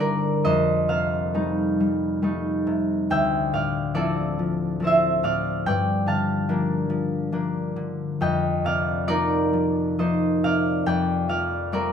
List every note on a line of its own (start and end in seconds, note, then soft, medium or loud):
0.00 0.51 G2 medium
0.00 0.48 D3 medium
0.00 1.33 G3 soft
0.00 0.49 D4 medium
0.00 0.49 E4 medium
0.00 2.60 G4 medium
0.00 3.48 A4 medium
0.00 0.49 A#4 medium
0.00 0.32 C5 medium
0.00 0.48 D5 loud
0.00 0.51 E5 loud
0.45 3.13 F2 medium
0.45 0.89 C5 medium
0.45 3.12 D#5 loud
0.88 2.66 C3 soft
0.88 4.80 C5 medium
0.88 3.52 F5 medium
1.34 1.79 G3 medium
1.34 2.22 A3 medium
1.34 2.22 D#4 medium
1.80 2.21 G3 soft
2.22 3.13 G3 soft
2.22 5.69 A3 medium
2.22 3.13 D#4 medium
2.67 3.13 C3 medium
3.10 5.69 D2 medium
3.10 4.82 E5 medium
3.10 3.84 G5 loud
3.53 5.22 A2 soft
3.53 3.93 D5 medium
3.53 5.22 F5 medium
3.94 4.38 F3 medium
3.94 4.82 C4 medium
3.94 4.82 E4 medium
3.94 5.69 A4 medium
3.94 5.23 D5 loud
4.39 4.79 F3 medium
4.80 6.48 F3 medium
4.80 5.70 C4 medium
4.84 5.70 E4 medium
4.84 5.70 C5 medium
4.84 5.70 E5 medium
5.23 5.69 A2 medium
5.23 5.67 D5 medium
5.23 6.07 F5 loud
5.66 8.26 G2 medium
5.66 8.27 D5 medium
5.66 8.20 G5 loud
6.06 7.75 D3 medium
6.06 8.64 F5 medium
6.06 8.26 A5 medium
6.49 6.88 F3 medium
6.49 7.32 A#3 medium
6.49 7.32 D4 medium
6.90 7.31 F3 medium
7.32 9.06 F3 medium
7.32 9.07 A#3 medium
7.32 8.25 D4 medium
7.76 8.25 D3 medium
8.21 10.85 F2 medium
8.21 9.97 D#5 medium
8.21 10.85 G5 loud
8.64 10.43 C3 medium
8.64 9.07 D5 medium
8.64 10.43 F5 loud
9.07 9.52 F3 medium
9.07 9.98 A#3 medium
9.07 9.99 D#4 medium
9.07 11.73 A#4 medium
9.07 10.45 D5 loud
9.53 9.98 F3 medium
9.99 11.28 F3 medium
9.99 11.93 A#3 medium
9.99 10.90 D#4 medium
9.99 11.93 C5 medium
9.99 10.89 D#5 medium
10.44 10.90 C3 medium
10.44 10.87 D5 medium
10.44 11.28 F5 loud
10.86 11.93 F2 medium
10.86 11.29 D5 medium
10.86 11.93 G5 loud
11.29 11.93 F3 medium
11.29 11.72 D5 medium
11.29 11.93 F5 loud
11.72 11.93 G3 medium
11.72 11.93 A3 medium
11.72 11.93 C4 medium
11.72 11.93 A#4 medium
11.72 11.93 D5 loud